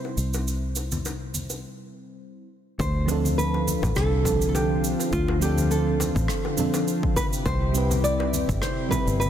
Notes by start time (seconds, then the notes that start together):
Already playing: C2 C3 G3 C4 E4 C5
0.05 high bongo
0.17 C2, cabasa
0.34 high bongo, cabasa
0.48 cabasa
0.76 high bongo, cabasa
0.92 high conga, cabasa
1.05 high bongo, cabasa
1.34 high conga, cabasa
1.50 high bongo, cabasa
2.79 D2 D3 C4 F4 C5, kick, high bongo, cabasa
3.06 F3 C4 D4, high bongo, cabasa
3.11 A4
3.25 high conga, cabasa
3.38 B4, cabasa
3.54 high bongo
3.67 high conga, cabasa
3.83 A1, kick, high bongo, high conga, cabasa
3.96 C2 A4, cross-stick, cabasa
4.22 F3 C4 D4, kick, high bongo, high conga, low conga, cabasa
4.28 A4
4.42 cabasa
4.49 A4
4.54 G4, high bongo, cabasa
4.84 cabasa
5.00 high bongo, cabasa
5.13 D2 F4, kick, cabasa
5.28 high bongo
5.39 F3 C4 D4 G4, cabasa
5.45 A4
5.58 high conga, cabasa
5.71 A4, high bongo, cabasa
6.00 high bongo, high conga, cabasa
6.15 A1, kick, high conga, cabasa
6.28 cross-stick, cabasa
6.45 high bongo
6.57 F3 C4 D4 A4, low conga, cabasa
6.74 high bongo, cabasa
6.88 cabasa
7.03 kick
7.16 C3 E4 G4 B4, kick, high bongo, cabasa
7.33 cabasa
7.46 C2 C5, kick, high bongo, cabasa
7.72 G3 C4 E4, cabasa
7.78 B4
7.91 high bongo, high conga, cabasa
8.04 D5, cabasa
8.20 high bongo
8.33 high conga, cabasa
8.49 G1, kick, high conga, cabasa
8.61 C5, cross-stick, high bongo, cabasa
8.89 G3 C4 E4 B4, kick, high bongo, high conga, low conga, cabasa
8.94 B4
9.07 G1, cabasa
9.20 B4, cabasa